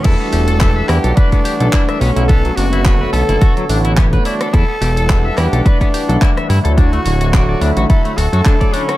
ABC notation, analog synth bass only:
X:1
M:4/4
L:1/16
Q:"Swing 16ths" 1/4=107
K:Edor
V:1 name="Analog synth bass" clef=bass
E,, z E,,,3 z E,, B,,, z3 B,,, z2 B,,, B,,,- | B,,, z F,,,3 z B,,, F,,, z2 A,,,3 z3 | E,, z E,,,3 z E,, B,,, z3 B,,, z2 G,, D,,- | D,, z D,,,3 z D,, A,,, z2 D,,, F,, z4 |]